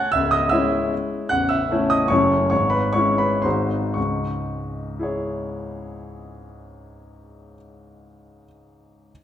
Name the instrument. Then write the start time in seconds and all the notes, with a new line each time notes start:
grand piano
Already playing: F#5 F#6
0.12 C#1 C#2 E5 E6
0.31 D#5 D#6
0.49 G#3 C#4 E4 E5 E6
1.29 A0 A1 F#5 F#6
1.49 E5 E6
1.71 A3 C#4 E4
1.90 D#5 D#6
2.08 F#1 F#2 A3 C#4 E4 C#5 C#6
2.50 G#1 G#2 C#5 C#6
2.70 B4 B5
2.93 G#3 C#4 E4 C#5 C#6
3.18 B4 B5
3.42 G#1 G#2 G#3 D#4 F#4 C5 C6
3.94 C#2 G#2 C#6
4.99 E4 G#4 C#5